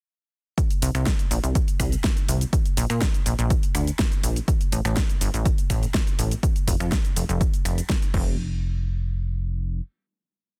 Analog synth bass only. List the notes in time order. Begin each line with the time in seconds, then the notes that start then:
0.82 C2
0.95 C2
1.31 A#1
1.44 C2
1.80 C2
2.29 C2
2.77 A#1
2.90 A#2
3.26 A#1
3.39 A#1
3.75 D2
4.24 A#1
4.72 A1
4.85 A1
5.21 G1
5.34 A1
5.70 A1
6.19 A1
6.68 F1
6.80 F2
7.16 F1
7.29 F1
7.65 F1
8.14 F1